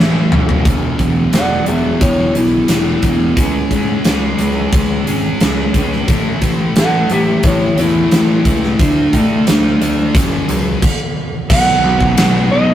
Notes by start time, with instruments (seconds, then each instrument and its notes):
Already playing: distorted electric guitar A2 E3 A3 C#4, electric slide guitar E5
0.00 picked electric bass A1, distorted electric guitar E4
0.29 picked electric bass F#1, distorted electric guitar E3 A3 C#4 E4, floor tom
0.46 distorted electric guitar A3 C#4 E4, floor tom
0.64 picked electric bass E1, distorted electric guitar E2 B2 E3, kick, closed hi-hat
0.98 picked electric bass E1, distorted electric guitar E2 B2 E3, kick, closed hi-hat
1.32 picked electric bass E1, distorted electric guitar E2 B2 E3, electric slide guitar D5 F#5, snare, closed hi-hat
1.66 picked electric bass E1, distorted electric guitar E2 B2 E3, electric slide guitar G#4 E5, closed hi-hat
2.01 picked electric bass E1, distorted electric guitar E2 B2 E3, electric slide guitar E4 C#5, kick, closed hi-hat
2.35 picked electric bass B1, distorted electric guitar E2 B2 E3, electric slide guitar E4, closed hi-hat
2.68 picked electric bass E1, distorted electric guitar E2 B2 E3, snare, closed hi-hat
3.02 picked electric bass E1, distorted electric guitar E2 B2 E3, kick, closed hi-hat
3.37 picked electric bass C#2, distorted electric guitar C#3 G#3 C#4, kick, closed hi-hat
3.71 picked electric bass G#2, distorted electric guitar C#3 G#3 C#4, kick, closed hi-hat
4.04 picked electric bass C#2, distorted electric guitar C#3 G#3 C#4, snare, closed hi-hat
4.39 picked electric bass C#2, distorted electric guitar C#3 G#3 C#4, closed hi-hat
4.72 picked electric bass C#2, distorted electric guitar C#3 G#3 C#4, kick, closed hi-hat
5.07 picked electric bass G#1, distorted electric guitar C#3 G#3 C#4, closed hi-hat
5.40 picked electric bass C#2, distorted electric guitar C#3 G#3 C#4, snare, closed hi-hat
5.74 picked electric bass C#2, distorted electric guitar C#3 G#3 C#4, kick, closed hi-hat
5.92 snare
6.08 picked electric bass A1, distorted electric guitar A2 E3 A3, kick, closed hi-hat
6.42 picked electric bass A1, distorted electric guitar A2 E3 A3, kick, closed hi-hat
6.76 picked electric bass A1, distorted electric guitar A2 E3 A3, electric slide guitar A4 F#5, snare, closed hi-hat
7.10 picked electric bass A1, distorted electric guitar A2 E3 A3, electric slide guitar G4 E5, closed hi-hat
7.43 picked electric bass A1, distorted electric guitar A2 E3 A3, electric slide guitar E4, kick, closed hi-hat
7.47 electric slide guitar C#5
7.77 picked electric bass E2, distorted electric guitar A2 E3 A3, electric slide guitar E4, closed hi-hat
8.11 picked electric bass A1, distorted electric guitar A2 E3 A3, snare, closed hi-hat
8.44 picked electric bass C#2, distorted electric guitar A2 E3 A3, kick, closed hi-hat
8.63 snare
8.79 picked electric bass D2, distorted electric guitar D3 A3 D4, kick, closed hi-hat
9.13 picked electric bass A2, distorted electric guitar D3 A3 D4, kick, closed hi-hat
9.46 picked electric bass D2, distorted electric guitar D3 A3 D4, snare, closed hi-hat
9.81 picked electric bass D2, distorted electric guitar D3 A3 D4, closed hi-hat
10.15 picked electric bass F#1, distorted electric guitar F#2 C#3 F#3, kick, closed hi-hat
10.49 picked electric bass C#2, distorted electric guitar F#2 C#3 F#3, closed hi-hat
10.82 kick, crash
11.50 picked electric bass B1, distorted electric guitar B2 D#3 F#3 B3 F#4, electric slide guitar F#5, kick, crash
11.84 picked electric bass B1
12.00 kick
12.17 picked electric bass B1, distorted electric guitar B2 D#3 F#3 B3 F#4, snare, ride bell
12.51 picked electric bass B1, distorted electric guitar D#3 F#3 B3 F#4, electric slide guitar D#5
12.69 muted distorted electric guitar stroke